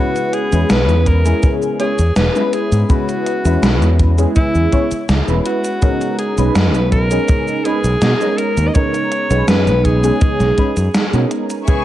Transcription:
Already playing: synth keys G#3 B3 C#4 E4 B4, alto saxophone F#4
0.16 closed hi-hat, cabasa
0.33 alto saxophone G#4, closed hi-hat
0.52 fingered electric bass E2, synth keys G#3 B3 C#4 E4 B4, closed hi-hat, cabasa
0.70 fingered electric bass B1, alto saxophone B4, snare, closed hi-hat, cabasa
0.89 fingered electric bass E2, closed hi-hat, cabasa
1.06 alto saxophone A#4, kick, closed hi-hat
1.25 synth keys G#3 B3 C#4 E4 G#4, closed hi-hat, cabasa
1.43 kick, closed hi-hat, cabasa
1.62 cabasa
1.79 synth keys G#3 B3 C#4 E4 C#5, alto saxophone G#4, closed hi-hat
1.99 fingered electric bass E2, closed hi-hat, cabasa
2.16 fingered electric bass E1, alto saxophone B4, snare, closed hi-hat, cabasa
2.35 synth keys G#3 B3 C#4 E4 B4, cabasa
2.53 alto saxophone G#4, closed hi-hat
2.72 fingered electric bass G#2, closed hi-hat, cabasa
2.83 alto saxophone G#4
2.89 synth keys G#3 B3 C#4 E4 B4, alto saxophone F#4, kick, closed hi-hat, cabasa
3.09 closed hi-hat, cabasa
3.26 closed hi-hat
3.44 fingered electric bass E2, synth keys G#3 B3 C#4 E4 B4, closed hi-hat, cabasa
3.63 fingered electric bass B1, snare, closed hi-hat, cabasa
3.82 fingered electric bass E2, closed hi-hat, cabasa
3.99 kick, closed hi-hat
4.18 synth keys G#3 B3 C#4 E4 G#4, closed hi-hat, cabasa
4.36 alto saxophone E4, kick, closed hi-hat, cabasa
4.55 fingered electric bass E2, cabasa
4.72 synth keys G#3 B3 C#4 E4 C#5, kick, closed hi-hat
4.91 muted fingered electric bass stroke, closed hi-hat, cabasa
5.09 fingered electric bass C#2, snare, closed hi-hat, cabasa
5.27 fingered electric bass E1, synth keys G#3 B3 C#4 E4 B4, cabasa
5.46 alto saxophone F#4, closed hi-hat
5.65 closed hi-hat, cabasa
5.82 synth keys G#3 B3 C#4 D#4 A#4, kick, closed hi-hat, cabasa
6.01 closed hi-hat, cabasa
6.19 alto saxophone G#4, closed hi-hat
6.37 fingered electric bass B1, synth keys G#3 B3 C#4 D#4 B4, closed hi-hat, cabasa
6.55 fingered electric bass F#2, alto saxophone B4, snare, closed hi-hat, cabasa
6.74 fingered electric bass B1, closed hi-hat, cabasa
6.91 alto saxophone A#4, kick, closed hi-hat
7.11 synth keys G#3 B3 C#4 D#4 G#4, closed hi-hat, cabasa
7.28 kick, closed hi-hat, cabasa
7.48 cabasa
7.65 synth keys G#3 B3 C#4 D#4 B4, alto saxophone G#4, closed hi-hat
7.84 fingered electric bass B1, closed hi-hat, cabasa
8.02 fingered electric bass B2, snare, closed hi-hat, cabasa
8.20 synth keys G#3 B3 C#4 D#4 A#4, cabasa
8.38 alto saxophone A#4, closed hi-hat
8.57 fingered electric bass D#2, closed hi-hat, cabasa
8.68 alto saxophone D#5
8.74 synth keys G#3 B3 C#4 D#4 A#4, alto saxophone C#5, kick, closed hi-hat, cabasa
8.94 closed hi-hat, cabasa
9.12 closed hi-hat
9.30 fingered electric bass B1, synth keys G#3 B3 C#4 D#4 B4, closed hi-hat, cabasa
9.48 fingered electric bass F#2, alto saxophone B4, snare, closed hi-hat, cabasa
9.67 fingered electric bass B1, closed hi-hat, cabasa
9.85 alto saxophone G#4, kick, closed hi-hat
10.03 synth keys G#3 B3 C#4 D#4 G#4, closed hi-hat, cabasa
10.21 kick, closed hi-hat, cabasa
10.40 fingered electric bass B1, snare, cabasa
10.57 synth keys G#3 B3 C#4 D#4 B4, kick, closed hi-hat
10.77 fingered electric bass F#2, closed hi-hat, cabasa
10.95 snare, closed hi-hat, cabasa
11.13 fingered electric bass B2, synth keys G#3 B3 C#4 D#4 A#4, closed hi-hat, cabasa
11.31 closed hi-hat
11.50 closed hi-hat, cabasa
11.67 synth keys G#3 B3 C#4 E4 B4, string section G#4 E5 G#5 C#6, alto saxophone G#4, kick, closed hi-hat, cabasa

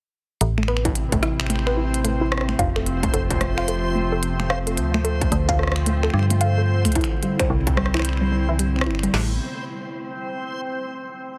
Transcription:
0.41 fm bass A1, ambient pad C3 A3 C4 E4, synth texture C4 C5, closed hi-hat
0.58 synth pluck A3, finger snap
0.63 finger snap
0.68 synth pluck B4, finger snap
0.77 finger snap
0.85 synth pluck E4, kick, closed hi-hat
0.95 closed hi-hat
1.12 synth pluck A3, kick, closed hi-hat
1.22 synth pluck E4, cross-stick, closed hi-hat
1.40 finger snap
1.46 synth pluck A3, finger snap
1.50 finger snap, closed hi-hat
1.56 finger snap
1.59 finger snap
1.67 synth pluck B4, finger snap
1.77 synth pluck E4
1.94 closed hi-hat
2.04 synth pluck A3, closed hi-hat
2.21 synth pluck E4
2.32 cross-stick
2.37 cross-stick
2.41 cross-stick
2.49 synth pluck A3, finger snap
2.59 fm bass F1, ambient pad C3 F3 F4, synth pluck F5, kick, closed hi-hat
2.76 synth pluck A4, finger snap
2.86 closed hi-hat
3.03 synth pluck A3, kick, closed hi-hat
3.13 fm bass F1, synth pluck A4, closed hi-hat
3.31 kick, closed hi-hat
3.41 synth pluck A3, cross-stick, closed hi-hat
3.58 synth pluck F5, finger snap
3.68 synth pluck A4, closed hi-hat
3.95 synth pluck A3
4.12 synth pluck A4
4.23 closed hi-hat
4.40 synth pluck A3, finger snap
4.50 synth pluck F5, cross-stick
4.67 synth pluck A4, closed hi-hat
4.77 fm bass D2, ambient pad D3 F4, closed hi-hat
4.94 synth pluck A3, finger snap
5.04 synth pluck A4, closed hi-hat
5.21 kick, closed hi-hat
5.32 fm bass D2, synth pluck A3, closed hi-hat
5.49 synth pluck F5, kick, closed hi-hat
5.59 synth pluck A4, cross-stick
5.63 cross-stick
5.67 cross-stick
5.72 cross-stick
5.76 finger snap
5.86 synth pluck A3, closed hi-hat
6.03 synth pluck A4, finger snap
6.10 fm bass G2, finger snap
6.14 finger snap
6.19 finger snap
6.23 finger snap
6.30 synth pluck A3, closed hi-hat
6.41 synth pluck F5, closed hi-hat
6.58 synth pluck A4
6.85 fm bass C2, synth pluck A3, finger snap, closed hi-hat
6.92 ambient pad C4, closed hi-hat
6.95 ambient pad G3 E4, synth pluck E4, kick, closed hi-hat
7.01 finger snap, closed hi-hat
7.04 closed hi-hat
7.23 synth pluck G3, closed hi-hat
7.39 synth pluck C5, finger snap, kick, closed hi-hat
7.50 fm bass C2, synth pluck E4
7.67 kick, closed hi-hat
7.77 synth pluck G3, cross-stick
7.86 cross-stick
7.94 synth pluck E4, finger snap, cross-stick
7.97 finger snap
7.99 finger snap, cross-stick
8.02 finger snap
8.05 finger snap, closed hi-hat
8.09 finger snap
8.13 finger snap
8.17 synth pluck G3, finger snap
8.32 synth pluck G3
8.49 synth pluck E4
8.59 synth pluck G3, closed hi-hat
8.76 synth pluck C4, finger snap
8.79 finger snap
8.81 finger snap, cross-stick
8.84 fm bass G1, synth pluck E4, finger snap
8.86 finger snap
8.91 finger snap
8.95 finger snap
8.99 finger snap
9.03 synth pluck G3, closed hi-hat
9.14 fm bass A1, synth pluck A3, snare, crash

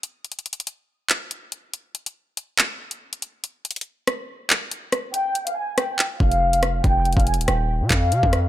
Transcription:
0.03 closed hi-hat
0.25 closed hi-hat
0.32 closed hi-hat
0.39 closed hi-hat
0.46 closed hi-hat
0.53 closed hi-hat
0.60 closed hi-hat
0.67 closed hi-hat
1.09 clap, closed hi-hat
1.31 closed hi-hat
1.52 closed hi-hat
1.74 closed hi-hat
1.95 closed hi-hat
2.06 closed hi-hat
2.37 closed hi-hat
2.59 clap
2.91 closed hi-hat
3.13 closed hi-hat
3.22 closed hi-hat
3.44 closed hi-hat
3.65 closed hi-hat
3.71 closed hi-hat
3.76 closed hi-hat
3.81 closed hi-hat
4.07 cross-stick, closed hi-hat
4.50 clap, closed hi-hat
4.71 closed hi-hat
4.92 cross-stick, closed hi-hat
5.14 violin section G5, closed hi-hat
5.35 closed hi-hat
5.46 violin section F5, closed hi-hat
5.56 violin section G#5
5.78 violin section G5, cross-stick, closed hi-hat
5.99 clap
6.20 808-style bass F1, violin section F5, kick
6.32 closed hi-hat
6.53 closed hi-hat
6.63 cross-stick, closed hi-hat
6.84 808-style bass F1, violin section G5, kick, closed hi-hat
7.05 closed hi-hat
7.13 closed hi-hat
7.17 808-style bass F1, violin section F5, kick, closed hi-hat
7.27 violin section G#5, closed hi-hat
7.34 closed hi-hat
7.38 808-style bass D#1, closed hi-hat
7.48 808-style bass D#1, violin section G5, cross-stick, closed hi-hat
7.81 808-style bass C3
7.90 808-style bass F2, violin section F5, kick, clap, closed hi-hat
8.12 808-style bass C3, closed hi-hat
8.23 808-style bass F2, kick
8.33 cross-stick, closed hi-hat

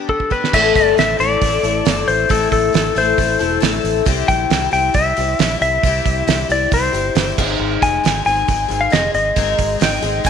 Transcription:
Already playing: twelve-string acoustic guitar G3 B3 D4 G4
0.09 electric slide guitar A4, kick
0.20 kick
0.30 twelve-string acoustic guitar G3 B3 D4 G4, electric slide guitar B4, kick
0.44 snare
0.53 fingered electric bass A1, twelve-string acoustic guitar A2 E3 A3 C4 E4 A4, electric slide guitar E5, kick, crash
0.75 fingered electric bass G1, electric slide guitar D5, kick, open hi-hat
0.97 fingered electric bass A1, twelve-string acoustic guitar A3 C4 E4 A4, electric slide guitar E5, snare, open hi-hat
1.19 fingered electric bass A1, twelve-string acoustic guitar A3 C4 E4 A4, electric slide guitar D5, open hi-hat
1.41 fingered electric bass A1, twelve-string acoustic guitar A3 C4 E4 A4, kick, open hi-hat
1.63 fingered electric bass A1, twelve-string acoustic guitar A3 C4 E4 A4, open hi-hat
1.85 fingered electric bass G1, twelve-string acoustic guitar A3 C4 E4 A4, snare, open hi-hat
2.08 fingered electric bass A1, electric slide guitar C5, open hi-hat
2.29 fingered electric bass A1, twelve-string acoustic guitar A2 E3 A3 C4 E4 A4, electric slide guitar A4, kick, open hi-hat
2.51 fingered electric bass A1, electric slide guitar A4, kick, open hi-hat
2.73 fingered electric bass A1, twelve-string acoustic guitar A3 C4 E4 A4, snare, open hi-hat
2.95 fingered electric bass A1, twelve-string acoustic guitar A3 C4 E4 A4, electric slide guitar C5, open hi-hat
3.17 fingered electric bass A1, twelve-string acoustic guitar A3 C4 E4 A4, kick, open hi-hat
3.39 fingered electric bass E1, twelve-string acoustic guitar A3 C4 E4 A4, open hi-hat
3.60 fingered electric bass A1, twelve-string acoustic guitar A3 C4 E4 A4, snare, open hi-hat
3.84 fingered electric bass A1, open hi-hat
4.05 fingered electric bass C2, twelve-string acoustic guitar C3 G3 C4 E4 G4, kick, open hi-hat
4.28 fingered electric bass A#1, electric slide guitar G5, kick, open hi-hat
4.50 fingered electric bass C2, twelve-string acoustic guitar G3 C4 E4 G4, snare, open hi-hat
4.71 fingered electric bass C2, twelve-string acoustic guitar C4 E4 G4, electric slide guitar G5, open hi-hat
4.94 fingered electric bass C2, twelve-string acoustic guitar G3 C4 E4 G4, electric slide guitar E5, kick, open hi-hat
5.17 fingered electric bass C2, twelve-string acoustic guitar C4 E4 G4, open hi-hat
5.39 fingered electric bass A#1, twelve-string acoustic guitar G3 C4 E4 G4, snare, open hi-hat
5.61 fingered electric bass C2, electric slide guitar E5, open hi-hat
5.83 fingered electric bass C2, twelve-string acoustic guitar C3 G3 C4 E4 G4, kick, open hi-hat
6.05 fingered electric bass C2, kick, open hi-hat
6.27 fingered electric bass C2, twelve-string acoustic guitar G3 C4 E4 G4, snare, open hi-hat
6.49 fingered electric bass C2, twelve-string acoustic guitar C4 E4 G4, electric slide guitar D5, open hi-hat
6.71 fingered electric bass C2, twelve-string acoustic guitar G3 C4 E4 G4, electric slide guitar C5, kick, open hi-hat
6.93 fingered electric bass G1, twelve-string acoustic guitar C4 E4 G4, open hi-hat
7.15 fingered electric bass G1, twelve-string acoustic guitar G3 C4 E4 G4, snare, open hi-hat
7.38 fingered electric bass G#1, twelve-string acoustic guitar G#2 D#3 G#3 C4 D#4 G#4, kick, crash
7.59 fingered electric bass G#1
7.82 fingered electric bass F1, electric slide guitar G#5, kick, open hi-hat
8.04 fingered electric bass G#1, twelve-string acoustic guitar G#3 C4 D#4 G#4, snare, open hi-hat
8.25 fingered electric bass G#1, twelve-string acoustic guitar G#3 C4 D#4 G#4, electric slide guitar G#5, open hi-hat
8.48 fingered electric bass G#1, twelve-string acoustic guitar G#3 C4 D#4 G#4, kick, open hi-hat
8.68 fingered electric bass G#1, twelve-string acoustic guitar G#3 C4 D#4 G#4, open hi-hat
8.81 electric slide guitar F5
8.90 fingered electric bass F1, twelve-string acoustic guitar G#3 C4 D#4 G#4, electric slide guitar D#5, snare, open hi-hat
9.14 fingered electric bass G#1, electric slide guitar D#5, open hi-hat
9.36 fingered electric bass G#1, twelve-string acoustic guitar G#2 D#3 G#3 C4 D#4 G#4, kick, open hi-hat
9.58 fingered electric bass G#1, kick, open hi-hat
9.80 fingered electric bass G#1, twelve-string acoustic guitar G#3 C4 D#4 G#4, mandolin G5, snare, open hi-hat
10.02 fingered electric bass G#1, twelve-string acoustic guitar G#3 C4 D#4 G#4, open hi-hat
10.24 fingered electric bass G#1, twelve-string acoustic guitar G#3 C4 D#4, mandolin G#5, kick, open hi-hat

